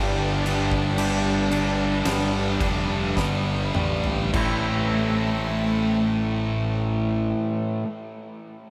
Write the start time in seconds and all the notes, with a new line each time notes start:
Already playing: G1 G2 D3 G3 B3 D4 G4 B4 E5 B5
0.45 G2 D3 G3 B3, crash
0.72 kick
0.98 G2 D3 G3 G4, crash
1.51 G2 D3 G3 D4, crash
2.04 G1 G2 D3 G3 B3, snare, crash
2.60 F1 G2 D3 G3 D4, kick, crash
3.17 G1 G2 D3 G3 B3, kick, snare
3.75 A1 G2 D3 G3, mid tom
4.04 floor tom
4.33 A1 A2 E3 G3 A3 C4 E4 A4 C5 G5, kick, crash
4.37 A3